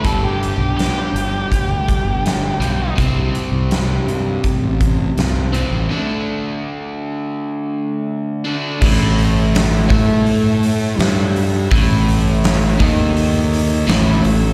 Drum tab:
CC |--------|--------|--------|x-------|
HH |xxxxxxxx|xxxxxxxx|--------|-ooooooo|
SD |--o---o-|--o---o-|--------|--o---o-|
BD |o---oo--|o---oo--|--------|o--o----|

CC |--------|
HH |oooooooo|
SD |--o---o-|
BD |o--o----|